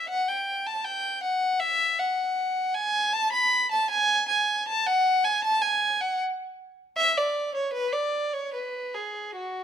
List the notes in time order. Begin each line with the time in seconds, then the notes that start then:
0.09 F#5
0.28 G5
0.67 A5
0.85 G5
1.23 F#5
1.60 E5
1.99 F#5
2.75 G#5
3.13 A5
3.32 B5
3.71 A5
3.90 G#5
4.28 G#5
4.68 A5
4.87 F#5
5.25 G#5
5.44 A5
5.62 G#5
6.01 F#5
6.97 E5
7.17 D5
7.54 C#5
7.73 B4
7.92 D5
8.33 C#5
8.54 B4
8.94 G#4
9.36 F#4